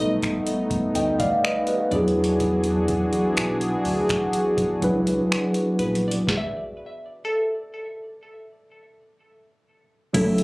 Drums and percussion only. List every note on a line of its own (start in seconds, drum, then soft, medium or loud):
0.22 finger snap medium
0.22 kick medium
0.22 closed hi-hat soft
0.47 closed hi-hat medium
0.70 kick loud
0.70 closed hi-hat soft
0.95 closed hi-hat medium
1.19 kick medium
1.19 closed hi-hat medium
1.45 finger snap loud
1.67 closed hi-hat soft
1.92 kick medium
1.92 closed hi-hat soft
2.08 closed hi-hat medium
2.24 closed hi-hat medium
2.40 kick loud
2.40 closed hi-hat medium
2.64 closed hi-hat medium
2.88 kick medium
2.88 closed hi-hat medium
3.13 closed hi-hat soft
3.37 finger snap loud
3.37 closed hi-hat medium
3.61 closed hi-hat medium
3.85 open hi-hat soft
4.09 finger snap medium
4.09 kick medium
4.09 closed hi-hat soft
4.33 closed hi-hat medium
4.57 kick medium
4.57 closed hi-hat medium
4.82 kick loud
4.82 closed hi-hat medium
5.07 closed hi-hat medium
5.32 finger snap loud
5.54 closed hi-hat medium
5.79 closed hi-hat soft
5.79 open hi-hat medium
5.95 closed hi-hat medium
6.11 closed hi-hat medium
6.27 kick loud
6.27 snare medium
10.14 kick loud
10.14 closed hi-hat medium
10.14 crash loud
10.38 closed hi-hat medium